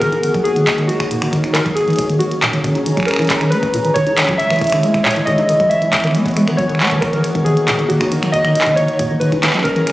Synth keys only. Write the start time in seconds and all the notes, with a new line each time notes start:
0.00 A#4
0.44 G#4
0.88 F#4
1.53 A#4
1.75 G#4
2.19 F#4
3.06 A#4
3.50 B4
3.94 C#5
4.38 E5
5.04 C#5
5.26 D#5
5.70 E5
6.57 C#5
7.01 A#4
7.45 G#4
7.88 F#4
8.32 D#5
8.76 C#5
9.20 B4
9.64 A#4